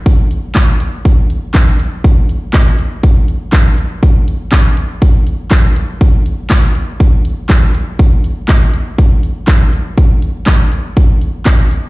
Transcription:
\new DrumStaff \with { instrumentName = "Drums" } \drummode { \time 4/4 \tempo 4 = 121 <hh bd>8 hh8 <hc hh bd sn>8 hh8 <hh bd>8 hh8 <hc hh bd sn>8 hh8 | <hh bd>8 hh8 <hc hh bd sn>8 hh8 <hh bd>8 hh8 <hc hh bd sn>8 hh8 | <hh bd>8 hh8 <hc hh bd sn>8 hh8 <hh bd>8 hh8 <hc hh bd sn>8 hh8 | <hh bd>8 hh8 <hc hh bd sn>8 hh8 <hh bd>8 hh8 <hc hh bd sn>8 hh8 |
<hh bd>8 hh8 <hc hh bd sn>8 hh8 <hh bd>8 hh8 <hc hh bd sn>8 hh8 | <hh bd>8 hh8 <hc hh bd sn>8 hh8 <hh bd>8 hh8 <hc hh bd sn>8 hh8 | }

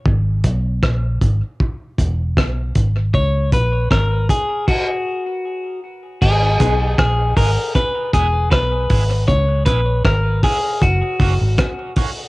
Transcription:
<<
  \new Staff \with { instrumentName = "Clean electric guitar" } { \time 4/4 \key gis \minor \tempo 4 = 78 r1 | cis''8 b'8 ais'8 gis'8 fis'4. r8 | gis'4 gis'8 ais'8 b'8 gis'8 b'4 | cis''8 b'8 ais'8 gis'8 fis'4. r8 | }
  \new Staff \with { instrumentName = "Reed electric piano" } { \time 4/4 \key gis \minor r1 | r1 | r8 <b dis' gis'>8 r2. | r1 | }
  \new Staff \with { instrumentName = "Clean electric guitar" } { \time 4/4 \key gis \minor r1 | r1 | r8 <gis b dis' gis'>8 r8 <gis b dis' gis'>8 r8 <gis b e' gis'>8 r8 <gis b e' gis'>8 | r8 <gis cis' e' gis'>8 r8 <gis cis' e' gis'>8 r8 <fis ais cis' fis'>8 r8 <fis ais cis' fis'>8 | }
  \new Staff \with { instrumentName = "Tonewheel organ" } { \time 4/4 \key gis \minor r1 | r1 | r16 <gis, dis>16 <gis b dis'>16 <gis, dis>16 r16 <gis, dis>16 <gis b dis'>16 <gis, dis>16 r8 <b e'>16 r8. <gis b e'>16 <b e'>16 | r8 <gis cis' e'>16 r8. <gis cis' e'>16 cis16 r16 <fis, cis>16 <ais cis' fis'>16 r8 <fis, cis>16 <ais cis' fis'>16 <fis, cis>16 | }
  \new Staff \with { instrumentName = "Fingered electric bass" } { \clef bass \time 4/4 \key gis \minor gis,,8 b,,8 ais,,8 gis,,16 r8. e,,8 b,,8 gis,,8 | cis,8 ais,,8 gis,,8 r2 r8 | gis,,8 b,,8 ais,,8 gis,,16 r8. e,,8 b,,8 gis,,8 | cis,8 ais,,8 gis,,8 r8 fis,,16 r16 fis,,16 gis,,16 r4 | }
  \new DrumStaff \with { instrumentName = "Drums" } \drummode { \time 4/4 bd8 <hh bd>8 <bd ss>8 <hh bd>8 bd8 <hh bd>8 <bd ss>8 <hh bd>8 | bd8 <hh bd>8 <bd ss>8 <hh bd>8 <cymc bd>4 r4 | <cymc bd>8 <hh bd>8 <bd ss>8 <hho bd>8 <hhp bd ss>8 <hh bd>8 <bd ss>8 <hho bd>8 | <hhp bd>8 <hh bd>8 <bd ss>8 <hho bd>8 <hhp bd>8 <hho bd>8 <hhp bd ss>8 <hho bd>8 | }
>>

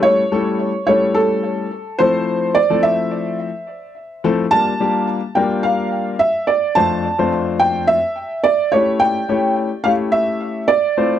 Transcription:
<<
  \new Staff \with { instrumentName = "Felt piano" } { \time 4/4 \key a \phrygian \tempo 4 = 107 cis''4. cis''8 a'4. c''8~ | c''8 d''8 e''2~ e''8 r8 | a''4 r8 g''8 f''4 e''8 d''8 | a''4 r8 g''8 e''4 d''8 cis''8 |
g''4. f''8 e''4 d''4 | }
  \new Staff \with { instrumentName = "Grand piano" } { \time 4/4 \key a \phrygian <g a cis' e' a'>16 r16 <g a cis' e' a'>8. r16 <g a cis' e' a'>4. r8 <f a c' e' a'>8~ | <f a c' e' a'>8 r16 <f a c' e' a'>4. r4 r16 <f a c' e' a'>16 r16 | <g bes d' f' bes'>16 r16 <g bes d' f' g'>8. r16 <g bes d' f' bes'>4. r4 | <f, a c' d' f' c''>8 r16 <f, a c' d' f' c''>4. r4 r16 <a cis' e' g' cis''>8~ |
<a cis' e' g' cis''>16 r16 <a cis' e' g' cis''>8. r16 <a cis' e' g' cis''>4. r8 <a c' e' f' c''>8 | }
>>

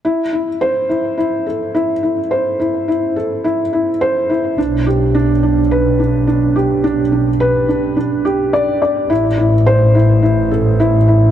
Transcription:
<<
  \new Staff \with { instrumentName = "Felt piano" } { \time 4/4 \key a \dorian \tempo 4 = 106 e'8 e'8 c''8 e'8 e'8 a'8 e'8 e'8 | c''8 e'8 e'8 a'8 e'8 e'8 c''8 e'8 | d'8 g'8 d'8 d'8 b'8 d'8 d'8 g'8 | d'8 d'8 b'8 d'8 d'8 g'8 d''8 d''8 |
e'8 e'8 c''8 e'8 e'8 a'8 e'8 e'8 | }
  \new Staff \with { instrumentName = "Double bass section" } { \clef bass \time 4/4 \key a \dorian r1 | r1 | b,,1~ | b,,2 r2 |
a,,1 | }
>>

